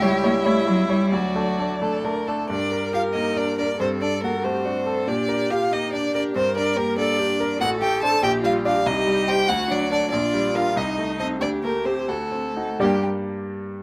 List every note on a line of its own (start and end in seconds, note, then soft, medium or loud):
0.00 1.15 C#2 medium
0.00 0.21 G3 soft
0.00 0.10 G3 medium
0.00 0.21 E4 medium
0.00 0.46 G4 medium
0.00 0.21 C#5 medium
0.00 1.10 E5 medium
0.23 0.43 G3 soft
0.23 0.32 A#3 medium
0.23 0.43 E4 soft
0.23 0.43 C#5 medium
0.45 0.65 G3 medium
0.45 0.53 A3 medium
0.45 1.14 E4 medium
0.45 0.65 E4 soft
0.45 0.65 C#5 medium
0.66 0.88 F#3 medium
0.66 0.87 G3 soft
0.66 0.87 E4 soft
0.66 0.87 C#5 soft
0.89 1.14 G3 medium
0.89 1.10 G3 soft
0.89 1.10 E4 soft
0.89 1.10 C#5 soft
1.12 1.35 D2 soft
1.12 1.82 F#3 medium
1.12 1.78 F#4 medium
1.12 2.27 D5 medium
1.35 1.56 A3 soft
1.35 1.56 D4 soft
1.35 1.57 A4 soft
1.59 1.79 A3 soft
1.59 1.80 D4 soft
1.59 1.80 A4 soft
1.81 2.02 A3 soft
1.81 2.03 D4 soft
1.81 2.06 A4 medium
1.81 2.03 A4 soft
2.04 2.25 A3 soft
2.04 2.25 D4 soft
2.04 2.26 A4 soft
2.04 2.28 A#4 medium
2.27 2.48 A3 soft
2.27 2.48 D4 soft
2.27 2.49 A4 medium
2.27 2.49 A4 soft
2.49 3.76 G2 soft
2.49 2.91 D4 medium
2.49 3.76 A#4 medium
2.49 2.90 D5 medium
2.72 3.06 A#4 soft
2.93 3.02 F4 soft
2.93 3.28 G4 soft
2.93 3.02 F5 medium
3.14 3.50 A#3 soft
3.14 3.38 D#4 medium
3.14 3.39 D#5 medium
3.37 3.71 D4 soft
3.37 3.58 D4 medium
3.37 3.57 D5 medium
3.58 3.66 D4 medium
3.58 3.80 A#4 soft
3.58 3.79 D5 medium
3.79 5.04 G2 soft
3.79 4.03 C4 medium
3.79 4.45 A4 medium
3.79 3.88 C5 medium
4.01 4.22 D4 medium
4.01 4.36 A4 soft
4.01 4.23 D5 medium
4.23 4.31 A#3 soft
4.23 4.57 F#4 soft
4.23 4.45 A#4 medium
4.44 4.78 A3 soft
4.44 5.08 C4 medium
4.44 4.67 G4 medium
4.44 5.09 C5 medium
4.65 4.99 D4 soft
4.65 4.86 F#4 soft
4.86 5.10 A4 medium
4.86 5.08 A4 soft
5.07 6.31 A#2 soft
5.07 5.53 D4 medium
5.07 5.72 G4 medium
5.07 5.52 D5 medium
5.29 5.63 A#4 soft
5.51 5.74 F4 medium
5.51 5.85 G4 soft
5.51 5.74 F5 medium
5.72 6.06 A#3 soft
5.72 5.95 D#4 medium
5.72 6.37 G4 medium
5.72 5.92 D#5 medium
5.93 6.14 D4 medium
5.93 6.27 D4 soft
5.93 6.14 D5 medium
6.14 6.34 D4 medium
6.14 6.36 A#4 soft
6.14 6.23 D5 medium
6.35 7.57 G2 soft
6.35 6.43 C4 medium
6.35 6.98 A#4 medium
6.35 6.56 C5 medium
6.56 6.78 D4 medium
6.56 6.90 A#4 medium
6.56 6.78 D5 medium
6.77 6.99 A#3 medium
6.77 7.11 G4 soft
6.77 6.98 A#4 medium
6.97 7.32 A#3 soft
6.97 7.62 D4 medium
6.97 7.21 A4 medium
6.97 7.60 D5 medium
7.19 7.53 D4 soft
7.19 7.39 G4 medium
7.39 7.47 A#4 medium
7.39 7.61 A#4 medium
7.60 8.21 A1 medium
7.60 7.80 F#4 medium
7.60 8.25 A4 medium
7.60 7.69 F#5 medium
7.80 8.15 A3 soft
7.80 8.04 G4 medium
7.80 8.02 G5 medium
8.02 8.21 D4 soft
8.02 8.24 A4 medium
8.02 8.22 C5 soft
8.02 8.23 A5 medium
8.23 8.83 A#1 medium
8.23 8.42 G4 medium
8.23 8.85 G4 medium
8.23 8.31 G5 medium
8.42 8.77 G3 soft
8.42 8.63 F4 medium
8.42 8.53 F5 medium
8.65 8.84 D4 soft
8.65 8.73 F4 medium
8.65 8.84 D5 medium
8.65 8.88 F5 medium
8.85 9.46 C2 medium
8.85 9.29 D#4 medium
8.85 9.47 G4 medium
8.85 9.30 D#5 medium
9.07 9.40 G3 soft
9.28 9.46 D#4 soft
9.28 9.49 G4 medium
9.28 9.47 C5 soft
9.28 9.50 G5 medium
9.47 10.10 D2 medium
9.47 9.69 F#4 medium
9.47 10.11 F#4 medium
9.47 9.73 F#5 medium
9.68 10.04 F#3 soft
9.68 9.89 D4 medium
9.68 9.91 D5 medium
9.90 10.10 D4 medium
9.90 10.10 D4 soft
9.90 10.10 A4 soft
9.90 10.10 D5 medium
10.11 10.75 A#1 soft
10.11 10.53 D4 medium
10.11 10.78 F4 medium
10.11 10.57 D5 medium
10.34 10.68 G3 soft
10.54 10.74 D4 soft
10.54 10.75 F4 medium
10.54 10.74 A#4 soft
10.54 10.79 F5 medium
10.75 11.39 C2 medium
10.75 11.17 D#4 medium
10.75 11.40 D#4 medium
10.75 11.18 D#5 medium
10.98 11.32 A3 soft
11.19 11.39 C4 soft
11.19 11.39 D#4 medium
11.19 11.39 A4 soft
11.19 11.27 D#5 medium
11.39 12.06 D2 soft
11.39 11.62 D4 medium
11.39 12.10 G4 medium
11.39 11.49 D5 medium
11.63 11.99 A3 soft
11.63 11.71 A#3 soft
11.63 11.87 A#4 medium
11.85 11.93 C4 soft
11.85 12.06 C4 soft
11.85 12.06 G4 soft
11.85 12.11 C5 medium
12.08 12.77 D2 soft
12.08 12.78 A3 soft
12.08 12.44 F#4 soft
12.08 12.80 A4 medium
12.32 12.70 C4 soft
12.56 12.77 D#4 soft
12.56 12.77 F#4 soft
12.79 13.05 G2 soft
12.79 13.04 G3 medium
12.79 13.05 G3 soft
12.79 13.05 A#3 medium
12.79 13.05 A#3 soft
12.79 13.05 D4 soft
12.79 13.05 G4 soft
12.79 13.05 G4 medium
12.79 13.05 D5 soft